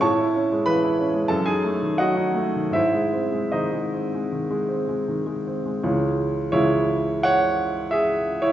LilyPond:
<<
  \new Staff \with { instrumentName = "Grand piano" } { \time 4/4 \key cis \minor \tempo 4 = 85 <cis'' a'' cis'''>4 <b' b''>4 <a' a''>16 <gis' gis''>8. <fis' dis'' fis''>4 | <e' bis' e''>4 <dis' bis' dis''>2 r4 | r4 <e' cis''>4 <cis'' fis''>4 <gis' e''>8. <e' cis''>16 | }
  \new Staff \with { instrumentName = "Grand piano" } { \clef bass \time 4/4 \key cis \minor a,16 e'16 cis'16 gis16 e16 e'16 cis'16 gis16 fis,16 dis'16 a16 dis16 fis16 dis'16 a16 dis16 | gis,16 gis16 bis16 gis16 dis16 gis16 bis16 gis16 dis16 gis16 bis16 gis16 dis16 gis16 bis16 gis16 | <cis, e gis cis'>4 <cis, e gis cis'>2. | }
>>